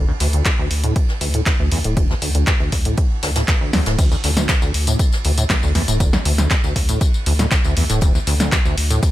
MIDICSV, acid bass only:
0, 0, Header, 1, 2, 480
1, 0, Start_track
1, 0, Tempo, 504202
1, 1874, Time_signature, 4, 2, 24, 8
1, 8677, End_track
2, 0, Start_track
2, 0, Title_t, "Acid bass"
2, 0, Program_c, 0, 38
2, 77, Note_on_c, 0, 38, 101
2, 116, Note_off_c, 0, 38, 0
2, 195, Note_on_c, 0, 38, 76
2, 262, Note_off_c, 0, 38, 0
2, 317, Note_on_c, 0, 38, 77
2, 413, Note_off_c, 0, 38, 0
2, 434, Note_on_c, 0, 41, 85
2, 475, Note_off_c, 0, 41, 0
2, 557, Note_on_c, 0, 38, 76
2, 654, Note_off_c, 0, 38, 0
2, 797, Note_on_c, 0, 45, 78
2, 894, Note_off_c, 0, 45, 0
2, 1154, Note_on_c, 0, 38, 78
2, 1222, Note_off_c, 0, 38, 0
2, 1278, Note_on_c, 0, 45, 77
2, 1342, Note_off_c, 0, 45, 0
2, 1394, Note_on_c, 0, 38, 101
2, 1435, Note_off_c, 0, 38, 0
2, 1517, Note_on_c, 0, 38, 78
2, 1614, Note_off_c, 0, 38, 0
2, 1634, Note_on_c, 0, 40, 106
2, 1702, Note_off_c, 0, 40, 0
2, 1758, Note_on_c, 0, 45, 79
2, 1854, Note_off_c, 0, 45, 0
2, 1874, Note_on_c, 0, 38, 85
2, 1976, Note_off_c, 0, 38, 0
2, 1998, Note_on_c, 0, 38, 102
2, 2036, Note_off_c, 0, 38, 0
2, 2115, Note_on_c, 0, 38, 80
2, 2182, Note_off_c, 0, 38, 0
2, 2238, Note_on_c, 0, 38, 76
2, 2334, Note_off_c, 0, 38, 0
2, 2355, Note_on_c, 0, 41, 82
2, 2395, Note_off_c, 0, 41, 0
2, 2478, Note_on_c, 0, 38, 77
2, 2574, Note_off_c, 0, 38, 0
2, 2718, Note_on_c, 0, 45, 80
2, 2814, Note_off_c, 0, 45, 0
2, 3075, Note_on_c, 0, 38, 78
2, 3142, Note_off_c, 0, 38, 0
2, 3199, Note_on_c, 0, 45, 77
2, 3262, Note_off_c, 0, 45, 0
2, 3315, Note_on_c, 0, 38, 101
2, 3355, Note_off_c, 0, 38, 0
2, 3438, Note_on_c, 0, 38, 79
2, 3534, Note_off_c, 0, 38, 0
2, 3555, Note_on_c, 0, 40, 104
2, 3622, Note_off_c, 0, 40, 0
2, 3679, Note_on_c, 0, 45, 78
2, 3774, Note_off_c, 0, 45, 0
2, 3796, Note_on_c, 0, 38, 84
2, 3896, Note_off_c, 0, 38, 0
2, 3918, Note_on_c, 0, 38, 102
2, 3956, Note_off_c, 0, 38, 0
2, 4037, Note_on_c, 0, 38, 75
2, 4103, Note_off_c, 0, 38, 0
2, 4159, Note_on_c, 0, 38, 78
2, 4255, Note_off_c, 0, 38, 0
2, 4276, Note_on_c, 0, 41, 83
2, 4316, Note_off_c, 0, 41, 0
2, 4399, Note_on_c, 0, 38, 79
2, 4494, Note_off_c, 0, 38, 0
2, 4639, Note_on_c, 0, 45, 80
2, 4734, Note_off_c, 0, 45, 0
2, 4996, Note_on_c, 0, 38, 77
2, 5063, Note_off_c, 0, 38, 0
2, 5118, Note_on_c, 0, 45, 80
2, 5182, Note_off_c, 0, 45, 0
2, 5235, Note_on_c, 0, 38, 99
2, 5275, Note_off_c, 0, 38, 0
2, 5358, Note_on_c, 0, 38, 79
2, 5454, Note_off_c, 0, 38, 0
2, 5474, Note_on_c, 0, 40, 107
2, 5542, Note_off_c, 0, 40, 0
2, 5598, Note_on_c, 0, 45, 79
2, 5694, Note_off_c, 0, 45, 0
2, 5714, Note_on_c, 0, 38, 84
2, 5816, Note_off_c, 0, 38, 0
2, 5837, Note_on_c, 0, 38, 101
2, 5876, Note_off_c, 0, 38, 0
2, 5955, Note_on_c, 0, 38, 79
2, 6022, Note_off_c, 0, 38, 0
2, 6078, Note_on_c, 0, 38, 78
2, 6174, Note_off_c, 0, 38, 0
2, 6194, Note_on_c, 0, 41, 85
2, 6235, Note_off_c, 0, 41, 0
2, 6317, Note_on_c, 0, 38, 80
2, 6414, Note_off_c, 0, 38, 0
2, 6558, Note_on_c, 0, 45, 78
2, 6654, Note_off_c, 0, 45, 0
2, 6915, Note_on_c, 0, 38, 77
2, 6982, Note_off_c, 0, 38, 0
2, 7038, Note_on_c, 0, 45, 80
2, 7102, Note_off_c, 0, 45, 0
2, 7155, Note_on_c, 0, 38, 99
2, 7195, Note_off_c, 0, 38, 0
2, 7278, Note_on_c, 0, 38, 79
2, 7374, Note_off_c, 0, 38, 0
2, 7394, Note_on_c, 0, 40, 102
2, 7462, Note_off_c, 0, 40, 0
2, 7518, Note_on_c, 0, 45, 77
2, 7614, Note_off_c, 0, 45, 0
2, 7635, Note_on_c, 0, 38, 85
2, 7736, Note_off_c, 0, 38, 0
2, 7758, Note_on_c, 0, 38, 103
2, 7796, Note_off_c, 0, 38, 0
2, 7875, Note_on_c, 0, 38, 78
2, 7942, Note_off_c, 0, 38, 0
2, 7999, Note_on_c, 0, 38, 78
2, 8094, Note_off_c, 0, 38, 0
2, 8116, Note_on_c, 0, 41, 85
2, 8156, Note_off_c, 0, 41, 0
2, 8238, Note_on_c, 0, 38, 79
2, 8334, Note_off_c, 0, 38, 0
2, 8478, Note_on_c, 0, 45, 81
2, 8574, Note_off_c, 0, 45, 0
2, 8677, End_track
0, 0, End_of_file